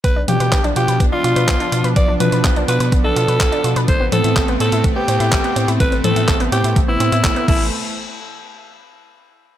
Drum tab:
CC |----------------|----------------|----------------|--------------x-|
HH |x-xxxxxxx-xxxxxx|x-xxxxxxx-xxxxxx|x-xxxxxxx-xxxxxx|xxxxxxxxx-xxxx--|
CP |----x-------x---|----x-------x---|----x-------x---|----x-------x---|
T1 |--o-------------|--o-------------|--o-------------|--o-------------|
BD |o---o---o---o---|o---o---o---o---|o---o---o---o---|o---o---o---o-o-|

CC |----------------|
HH |----------------|
CP |----------------|
T1 |----------------|
BD |----------------|